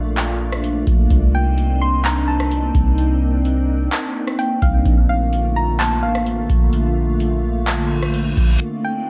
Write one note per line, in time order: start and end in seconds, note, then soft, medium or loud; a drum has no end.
0.00 0.83 A#1 loud
0.00 1.07 A3 medium
0.00 8.57 A#3 medium
0.00 4.82 D4 medium
0.00 1.07 F4 medium
0.17 clap loud
0.17 closed hi-hat medium
0.52 cross-stick medium
0.64 closed hi-hat medium
0.87 1.10 A#1 loud
0.87 kick loud
0.87 closed hi-hat medium
1.11 2.71 C2 loud
1.11 4.82 C4 medium
1.11 4.82 D#4 medium
1.11 kick loud
1.11 closed hi-hat medium
1.35 1.78 G5 medium
1.58 closed hi-hat medium
1.82 2.03 C6 medium
2.04 2.27 A#5 medium
2.04 clap loud
2.04 closed hi-hat medium
2.28 2.94 A5 medium
2.40 cross-stick medium
2.51 closed hi-hat medium
2.75 3.88 C2 loud
2.75 kick loud
2.75 closed hi-hat medium
2.98 closed hi-hat medium
3.45 closed hi-hat medium
3.92 clap loud
3.92 closed hi-hat medium
4.27 cross-stick medium
4.39 4.61 G5 medium
4.39 closed hi-hat medium
4.62 4.85 C2 loud
4.62 4.84 F5 medium
4.62 kick loud
4.62 closed hi-hat medium
4.85 6.04 A#1 loud
4.85 8.57 D3 medium
4.85 8.57 A3 medium
4.85 8.57 F4 medium
4.85 kick loud
4.85 closed hi-hat medium
5.09 5.53 F5 medium
5.33 closed hi-hat medium
5.56 5.78 A#5 medium
5.79 6.01 A5 medium
5.79 clap loud
5.79 closed hi-hat medium
6.03 6.47 A1 medium
6.03 6.69 F5 medium
6.15 cross-stick medium
6.26 closed hi-hat medium
6.50 8.33 A#1 loud
6.50 kick loud
6.50 closed hi-hat medium
6.73 closed hi-hat medium
7.20 closed hi-hat medium
7.67 clap loud
7.67 closed hi-hat medium
7.67 reverse cymbal medium
8.03 cross-stick medium
8.14 closed hi-hat medium
8.37 8.60 A#1 loud
8.37 kick loud
8.37 closed hi-hat medium
8.60 9.10 A#3 medium
8.60 9.10 C4 medium
8.60 9.10 D4 medium
8.60 9.10 D#4 medium
8.85 9.10 G5 medium